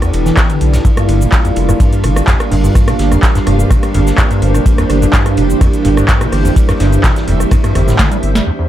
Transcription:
Already playing: E3 B3 D4 E4 G4 A4 D5 F#5
0.02 E2, cross-stick, closed hi-hat, ride, shaker
0.13 E1, open hi-hat, ride
0.26 E3, snare, closed hi-hat, shaker
0.37 kick, snare, clap, closed hi-hat, ride, shaker
0.50 D3, closed hi-hat, ride, shaker
0.61 B1, open hi-hat, ride
0.73 E2, snare, open hi-hat, ride, shaker
0.85 G2 G3 A#3 D4 F4, kick, closed hi-hat, ride, shaker
0.97 G2, cross-stick, closed hi-hat, shaker
1.08 G1, open hi-hat, ride
1.21 C3 G4, closed hi-hat, shaker
1.29 F5, kick, cross-stick, snare, clap, closed hi-hat, ride, shaker
1.45 F2, closed hi-hat, shaker
1.56 F1, open hi-hat, ride
1.65 G2 C5, cross-stick, closed hi-hat, shaker
1.80 G2, kick, closed hi-hat, ride, shaker
1.93 closed hi-hat, shaker
2.03 G1 C3, cross-stick, open hi-hat, ride
2.16 cross-stick, closed hi-hat, ride, shaker
2.27 F2, kick, snare, clap, closed hi-hat, ride, shaker
2.40 cross-stick, closed hi-hat, shaker
2.51 G1 G2, open hi-hat
2.64 G2, closed hi-hat, shaker
2.75 kick, cross-stick, closed hi-hat, ride, shaker
2.88 C3, cross-stick, closed hi-hat, shaker
2.99 G1, snare, open hi-hat, ride
3.12 F2, cross-stick, closed hi-hat, shaker
3.23 kick, snare, clap, closed hi-hat, ride, shaker
3.35 G2, snare, closed hi-hat, shaker
3.47 F1 G2, cross-stick, open hi-hat, ride
3.59 closed hi-hat, shaker
3.71 C3, kick, cross-stick, closed hi-hat, ride, shaker
3.83 cross-stick, closed hi-hat, ride, shaker
3.94 G1 F2, open hi-hat, ride
4.06 snare, closed hi-hat, shaker
4.18 G2, kick, cross-stick, snare, clap, closed hi-hat, ride, shaker
4.31 G2, closed hi-hat, ride, shaker
4.42 G1, open hi-hat, ride
4.54 C3, cross-stick, open hi-hat, ride, shaker
4.66 E3, kick, closed hi-hat, ride, shaker
4.78 F2, cross-stick, closed hi-hat, shaker
4.90 G1, cross-stick, open hi-hat, ride
5.02 G2, closed hi-hat, shaker
5.13 G2, kick, snare, clap, closed hi-hat, ride, shaker
5.26 cross-stick, closed hi-hat, shaker
5.37 F1 C3, open hi-hat, ride
5.42 E5
5.50 closed hi-hat, shaker
5.61 F2, kick, cross-stick, closed hi-hat, ride, shaker
5.73 closed hi-hat, shaker
5.84 G1 G2, open hi-hat, ride
5.97 G2, cross-stick, closed hi-hat, ride, shaker
6.08 kick, snare, clap, closed hi-hat, ride, shaker
6.21 C3, cross-stick, closed hi-hat, shaker
6.32 G1, cross-stick, open hi-hat
6.45 F2, closed hi-hat, shaker
6.56 kick, closed hi-hat, ride, shaker
6.69 G2, cross-stick, closed hi-hat, shaker
6.80 G1 G2, snare, open hi-hat, ride
6.92 closed hi-hat, shaker
7.04 C3, kick, cross-stick, snare, clap, closed hi-hat, ride, shaker
7.16 snare, closed hi-hat, shaker
7.27 F1 F2, open hi-hat, ride
7.40 cross-stick, closed hi-hat, shaker
7.51 G2, kick, cross-stick, closed hi-hat, ride, shaker
7.64 G2, cross-stick, closed hi-hat, ride, shaker
7.75 G1 F2, cross-stick, open hi-hat, ride
7.88 A2, snare, closed hi-hat, shaker
7.99 D3, kick, snare, clap, closed hi-hat, ride, shaker
8.11 G3, closed hi-hat, ride, shaker
8.23 G1, open hi-hat
8.35 G3, snare, open hi-hat, shaker
8.47 E2 E3 D4 E4 G4
8.56 E2 A4

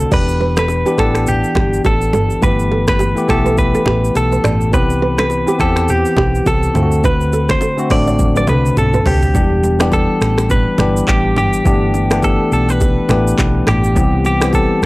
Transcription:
Already playing: D3 A3 C4 F#4 A4
0.11 E1 E3 B3 D4 G4 B4 D5, kick, crash, low conga, shaker
0.28 shaker
0.41 B4
0.57 A4 B4, finger snap, cross-stick, low bongo, shaker
0.68 high bongo, shaker
0.85 E3 B3 D4 G4, shaker
0.97 A1 E3 B3 D4 G4 A4, finger snap, kick, cross-stick, shaker
1.15 finger snap, cross-stick, shaker
1.27 G4, low conga, shaker
1.44 shaker
1.55 G1 G4, finger snap, kick, cross-stick, low bongo, low conga
1.73 shaker
1.85 A1 G4 A4, kick, high bongo, shaker
2.01 shaker
2.13 G1 A4, mid tom, low bongo, shaker
2.30 shaker
2.41 G1 E3 A3 B3 G4 B4, kick, low conga, shaker
2.59 shaker
2.71 A4
2.88 B4, finger snap, kick, cross-stick, low bongo, shaker
2.99 G4, high bongo, shaker
3.16 E3 A3 B3 G4, shaker
3.28 B1 E3 A3 B3 G4 A4, finger snap, kick, cross-stick, shaker
3.46 B4, shaker
3.58 B4, kick, low conga, shaker
3.75 A4, shaker
3.86 A1 G4, finger snap, cross-stick, low bongo, low conga
4.05 shaker
4.15 B1 A4, high bongo, shaker
4.32 B4, shaker
4.44 A1 D5, finger snap, cross-stick, mid tom, low bongo, shaker
4.61 shaker
4.72 C2 E3 B3 C4 G4 B4 C5, kick, low conga, shaker
4.90 shaker
5.02 B4
5.18 A4 B4, finger snap, cross-stick, low bongo, shaker
5.30 high bongo, shaker
5.46 E3 B3 C4 G4, shaker
5.58 E2 E3 B3 C4 G4 A4, finger snap, kick, cross-stick, shaker
5.76 finger snap, cross-stick, shaker
5.88 G4, low conga, shaker
6.05 shaker
6.17 B1 G4, finger snap, kick, cross-stick, low bongo, low conga
6.35 shaker
6.46 C2 G4 A4, kick, high bongo, shaker
6.63 shaker
6.74 D2 D3 A3 C4 F4 A4, mid tom, low bongo, shaker
6.83 F#4
6.92 shaker
7.04 B4, kick, low conga, shaker
7.21 shaker
7.33 A4, shaker
7.49 C5, finger snap, kick, cross-stick, low bongo, shaker
7.61 A4, high bongo, shaker
7.77 D3 A3 C4 F#4, shaker
7.89 A1 D3 A3 C4 D4 C5 D5, finger snap, kick, cross-stick, open hi-hat, shaker
8.07 D5, shaker
8.19 kick, high tom, low conga, shaker
8.36 B4 D5, high tom, shaker
8.47 C2 A4 B4, mid tom, low bongo, low conga, shaker
8.65 mid tom, shaker
8.77 B1 A4, mid tom, high bongo, shaker
8.94 B4, mid tom, shaker
9.06 C2 G4 C5, floor tom, open hi-hat, low bongo, shaker
9.23 floor tom, shaker
9.34 E1 E3 G3 B3 D4 G4, kick, low conga, shaker
9.64 low bongo, shaker
9.79 E3 G3 B3 D4 G4, finger snap, cross-stick, low bongo, shaker
9.92 A4, kick, high bongo, shaker
10.21 A1, finger snap, cross-stick, shaker
10.38 finger snap, cross-stick, high bongo, shaker
10.50 B4, kick, high bongo, low conga, shaker
10.78 G1 E3 G3 B3 D4 G4, finger snap, cross-stick, low bongo, low conga, shaker
10.97 shaker
11.08 A1 G4, kick, clap, high bongo, shaker
11.36 G1 G4, mid tom, low bongo, shaker
11.53 shaker
11.64 G1 E3 A3 B3 D4 G4, kick, low conga, shaker
11.94 low bongo, shaker
12.10 E3 A3 B3 D4 G4, finger snap, cross-stick, low bongo, shaker
12.22 A4, kick, high bongo, shaker
12.52 B1 A4, shaker
12.69 B4, high bongo, shaker
12.81 kick, high bongo, low conga, shaker
13.09 A1 E3 A3 B3 D4 G4, finger snap, cross-stick, low bongo, low conga, shaker
13.27 shaker
13.38 B1, kick, clap, high bongo, shaker
13.67 A1 G4, finger snap, cross-stick, mid tom, low bongo, shaker
13.84 shaker
13.95 C2 E3 G3 B3 C4 G4, kick, low conga, shaker
14.25 G4, low bongo, shaker
14.41 E3 G3 B3 C4 G4, finger snap, cross-stick, low bongo, shaker
14.53 A4, kick, high bongo, shaker
14.83 E2

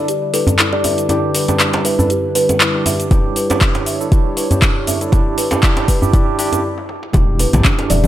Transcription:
Already playing: D3 G3 E4 B4
0.08 G4, closed hi-hat, shaker
0.34 D4 E4 G4 A4 B4, mid tom, open hi-hat, shaker
0.47 closed hi-hat, djembe bass, shaker
0.59 E4, clap, closed hi-hat, shaker
0.73 D4 E4 G4 D5
0.84 E5, mid tom, open hi-hat, djembe tone, shaker
0.98 closed hi-hat, shaker
1.09 D4 E4 G4, closed hi-hat, djembe tone, shaker
1.35 B4, open hi-hat, shaker
1.48 D4 E4 G4, closed hi-hat, mid tom, djembe tone, shaker
1.60 D4, clap, closed hi-hat, shaker
1.73 closed hi-hat, djembe slap
1.85 B4 E5, open hi-hat, shaker
1.99 D4 E4 A4, djembe bass, shaker
2.10 G4, closed hi-hat, shaker
2.35 D4 E4 G4 B4, mid tom, open hi-hat, shaker
2.49 closed hi-hat, djembe tone, shaker
2.60 E4, clap, closed hi-hat, shaker
2.75 D4 E4 G4
2.86 E5, open hi-hat, djembe tone, shaker
3.00 closed hi-hat, shaker
3.11 D4 E4 G4 C#5, kick, closed hi-hat, djembe tone, shaker
3.36 B4, open hi-hat, shaker
3.50 D4 E4 G4, closed hi-hat, mid tom, djembe slap, djembe tone, shaker
3.61 D4, kick, clap, closed hi-hat, shaker
3.75 closed hi-hat, djembe slap
3.86 E5, open hi-hat, shaker
4.01 D4 E4 A4, shaker
4.12 D4 E4 G4, kick, closed hi-hat, shaker
4.37 B4, mid tom, open hi-hat, shaker
4.51 D4 E4 G4, closed hi-hat, djembe bass, shaker
4.62 D4, kick, clap, closed hi-hat, shaker
4.87 E5, mid tom, open hi-hat, djembe tone, shaker
5.01 D4 E4 A4, closed hi-hat, shaker
5.12 D4 E4 G4, kick, closed hi-hat, djembe tone, shaker
5.38 B4, open hi-hat, shaker
5.51 D4 E4 G4, closed hi-hat, mid tom, djembe slap, djembe tone, shaker
5.63 D4 E4 G4, kick, clap, closed hi-hat, shaker
5.77 closed hi-hat, djembe slap
5.88 B4, kick, open hi-hat, shaker
6.02 D4 E4 G4, djembe bass, shaker
6.13 D4 E4 G4, kick, closed hi-hat, shaker
6.39 D4 E4 G4, mid tom, open hi-hat, shaker
6.52 closed hi-hat, djembe tone, shaker
6.78 high tom
6.89 mid tom
7.03 mid tom
7.13 E1 D3 G3 B3 D4 E4 G4, kick, closed hi-hat, djembe tone, low conga, shaker
7.39 B4, open hi-hat, djembe tone, shaker
7.53 B1 D4 E4 G4, closed hi-hat, mid tom, djembe slap, high conga, low conga, shaker
7.65 D4, kick, clap, closed hi-hat, djembe tone, shaker
7.79 closed hi-hat, djembe slap
7.90 E1 D5 E5, open hi-hat, high conga, djembe tone, shaker
8.04 D4 E4 A4, high conga

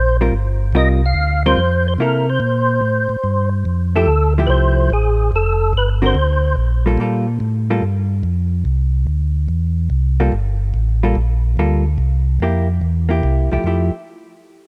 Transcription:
Already playing: A#1 C5
0.21 G3 C4 F4 A#4
0.32 G1
0.73 C2 G3 C4 F4 A#4 D#5
1.06 F5
1.14 D2
1.46 G3 C4 F4 A#4 C5
1.57 F2
1.88 C5
1.98 C3 A#3 E4 A4 A#4
2.30 C5
2.40 A#2
2.81 A2
3.09 A2
3.24 G2
3.65 F2
3.96 F3 A3 E4 G4 A4
4.06 D2
4.38 F3 A3 E4 G4
4.47 C2 B4 C5
4.90 A1 G#4
5.32 F1 A4
5.73 G1
5.77 B4
6.02 D3 C4 F#4 A#4 C5
6.15 D2
6.56 A#1
6.86 G3 A#3 F4 A4
6.98 A#2 G3 A#3 F4 A4
7.40 A2
7.70 G3 A#3 F4 A4
7.82 G2
8.23 F2
8.65 C2
9.07 D2
9.48 E2
9.90 C2
10.20 G3 A#3 F4 A4
10.32 G1
10.74 A1
11.03 G3 A#3 F4 A4
11.15 A#1
11.57 D2 G3 A#3 F4 A4
11.98 C2
12.40 F2 A#3 E4 G4
12.81 E2
13.09 A#3 E4 G4
13.23 C2
13.51 C2 F3 A3 E4 G4
13.64 F2 F3 A3 E4 G4

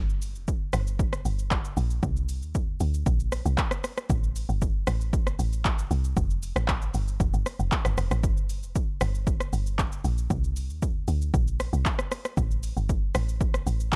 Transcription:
Already playing: G1
0.10 shaker
0.22 open hi-hat, shaker
0.35 F1, shaker
0.48 kick, shaker
0.73 G1, cross-stick, open hi-hat, shaker
0.87 shaker
0.99 kick, shaker
1.13 cross-stick, shaker
1.25 G1, open hi-hat, shaker
1.39 shaker
1.51 kick, clap, shaker
1.65 shaker
1.77 A#1, open hi-hat, shaker
1.90 shaker
2.03 C2, kick, shaker
2.17 shaker
2.29 open hi-hat, shaker
2.42 D#2, shaker
2.55 kick, shaker
2.80 D2, open hi-hat, shaker
2.94 shaker
3.06 A#1, kick, shaker
3.20 shaker
3.32 cross-stick, open hi-hat, shaker
3.46 C2, shaker
3.58 kick, clap, shaker
3.71 cross-stick, shaker
3.84 cross-stick, open hi-hat, shaker
3.97 cross-stick, shaker
4.10 A1, kick, shaker
4.24 shaker
4.36 open hi-hat, shaker
4.49 G1, shaker
4.62 kick, shaker
4.87 A1, cross-stick, open hi-hat, shaker
5.01 shaker
5.13 kick, shaker
5.27 cross-stick, shaker
5.39 A1, open hi-hat, shaker
5.53 shaker
5.65 kick, clap, shaker
5.79 shaker
5.91 C2, open hi-hat, shaker
6.04 shaker
6.17 F1, kick, shaker
6.30 shaker
6.43 open hi-hat, shaker
6.56 A1, cross-stick, shaker
6.68 kick, clap, shaker
6.82 shaker
6.94 G1, open hi-hat, shaker
7.08 shaker
7.20 F1, kick, shaker
7.34 G1, shaker
7.46 cross-stick, open hi-hat, shaker
7.59 F1, shaker
7.72 kick, clap, shaker
7.85 G1, cross-stick, shaker
7.98 F1, cross-stick, open hi-hat, shaker
8.11 A1, cross-stick, shaker
8.23 G1, kick, shaker
8.37 shaker
8.49 open hi-hat, shaker
8.63 F1, shaker
8.75 kick, shaker
9.01 G1, cross-stick, open hi-hat, shaker
9.15 shaker
9.27 kick, shaker
9.40 cross-stick, shaker
9.53 G1, open hi-hat, shaker
9.66 shaker
9.79 kick, clap, shaker
9.92 shaker
10.04 A#1, open hi-hat, shaker
10.18 shaker
10.30 C2, kick, shaker
10.44 shaker
10.56 open hi-hat, shaker
10.70 D#2, shaker
10.82 kick, shaker
11.08 D2, open hi-hat, shaker
11.22 shaker
11.34 A#1, kick, shaker
11.47 shaker
11.60 cross-stick, open hi-hat, shaker
11.73 C2, shaker
11.86 kick, clap, shaker
11.99 cross-stick, shaker
12.11 cross-stick, open hi-hat, shaker
12.25 cross-stick, shaker
12.37 A1, kick, shaker
12.51 shaker
12.63 open hi-hat, shaker
12.77 G1, shaker
12.89 kick, shaker
13.15 A1, cross-stick, open hi-hat, shaker
13.29 shaker
13.41 kick, shaker
13.54 cross-stick, shaker
13.67 A1, open hi-hat, shaker
13.80 shaker
13.92 kick, clap, shaker

